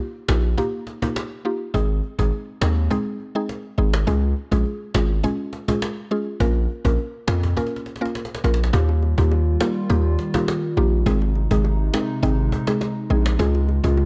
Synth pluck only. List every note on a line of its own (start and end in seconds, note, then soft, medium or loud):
0.28 0.45 A#3 medium
0.28 0.45 D#4 medium
0.28 0.45 F4 medium
0.28 0.45 G4 medium
0.58 0.99 A#3 loud
0.58 0.99 D#4 medium
0.58 0.99 F4 medium
0.58 0.99 G4 loud
1.02 1.17 A#3 medium
1.02 1.17 D#4 medium
1.02 1.17 F4 medium
1.02 1.17 G4 medium
1.45 1.61 A#3 medium
1.45 1.62 D#4 medium
1.45 1.62 F4 medium
1.45 1.62 G4 medium
1.74 1.91 G#3 medium
1.74 1.91 C4 medium
1.74 1.91 D#4 medium
1.74 1.91 G#4 loud
2.19 2.34 G#3 medium
2.19 2.34 C4 medium
2.19 2.34 D#4 medium
2.19 2.34 G#4 medium
2.61 2.78 G#3 medium
2.61 2.78 C4 medium
2.61 2.78 D#4 medium
2.61 2.78 G#4 medium
2.90 3.31 G#3 medium
2.90 3.32 C4 medium
2.90 3.32 D#4 medium
2.90 3.32 G#4 loud
3.35 3.50 G#3 medium
3.35 3.50 C4 medium
3.35 3.50 D#4 medium
3.35 3.50 G#4 medium
3.78 3.94 G#3 medium
3.78 3.95 C4 medium
3.78 3.95 D#4 medium
3.78 3.95 G#4 medium
4.07 4.24 G#3 loud
4.07 4.24 C#4 medium
4.07 4.24 F4 medium
4.07 4.24 G#4 loud
4.51 4.67 G#3 medium
4.51 4.67 C#4 medium
4.51 4.67 F4 medium
4.51 4.67 G#4 medium
4.94 5.11 G#3 medium
4.94 5.11 C#4 medium
4.94 5.11 F4 medium
4.94 5.11 G#4 medium
5.24 5.65 G#3 medium
5.24 5.65 C#4 medium
5.24 5.65 F4 medium
5.24 5.65 G#4 loud
5.68 5.83 G#3 medium
5.68 5.83 C#4 medium
5.68 5.83 F4 medium
5.68 5.83 G#4 medium
6.11 6.28 G#3 medium
6.11 6.28 C#4 medium
6.11 6.28 F4 medium
6.11 6.28 G#4 medium
6.40 6.57 A#3 loud
6.40 6.57 C#4 medium
6.40 6.57 F4 medium
6.40 6.57 A#4 loud
6.85 7.00 A#3 medium
6.85 7.00 C#4 medium
6.85 7.00 F4 medium
6.85 7.00 A#4 medium
7.27 7.44 A#3 medium
7.27 7.44 C#4 medium
7.27 7.44 F4 medium
7.27 7.44 A#4 medium
7.57 7.98 A#3 medium
7.57 7.98 C#4 medium
7.57 7.98 F4 medium
7.57 7.98 A#4 loud
8.01 8.16 A#3 medium
8.01 8.16 C#4 medium
8.01 8.16 F4 medium
8.01 8.16 A#4 medium
8.44 8.60 A#3 medium
8.44 8.61 C#4 medium
8.44 8.61 F4 medium
8.44 8.61 A#4 medium
8.73 8.90 A#3 loud
8.73 8.90 D#4 medium
8.73 8.90 F4 medium
8.73 8.90 G4 loud
9.18 9.33 A#3 medium
9.18 9.33 D#4 medium
9.18 9.33 F4 medium
9.18 9.33 G4 medium
9.60 9.77 A#3 medium
9.60 9.77 D#4 medium
9.60 9.77 F4 medium
9.60 9.77 G4 medium
9.90 10.31 A#3 loud
9.90 10.31 D#4 medium
9.90 10.31 F4 medium
9.90 10.31 G4 loud
10.34 10.49 A#3 medium
10.34 10.49 D#4 medium
10.34 10.49 F4 medium
10.34 10.49 G4 medium
10.77 10.94 A#3 medium
10.77 10.94 D#4 medium
10.77 10.94 F4 medium
10.77 10.94 G4 medium
11.06 11.23 G#3 medium
11.06 11.23 C4 medium
11.06 11.23 D#4 medium
11.06 11.23 G#4 loud
11.51 11.66 G#3 medium
11.51 11.66 C4 medium
11.51 11.66 D#4 medium
11.51 11.66 G#4 medium
11.93 12.10 G#3 medium
11.93 12.10 C4 medium
11.93 12.10 D#4 medium
11.93 12.10 G#4 medium
12.23 12.64 G#3 medium
12.23 12.64 C4 medium
12.23 12.64 D#4 medium
12.23 12.64 G#4 loud
12.67 12.82 G#3 medium
12.67 12.82 C4 medium
12.67 12.82 D#4 medium
12.67 12.82 G#4 medium
13.10 13.27 G#3 medium
13.10 13.27 C4 medium
13.10 13.27 D#4 medium
13.10 13.27 G#4 medium
13.39 13.56 G#3 medium
13.39 13.56 C#4 medium
13.39 13.56 F4 medium
13.39 13.56 G#4 loud
13.84 13.99 G#3 medium
13.84 13.99 C#4 medium
13.84 13.99 F4 medium
13.84 13.99 G#4 medium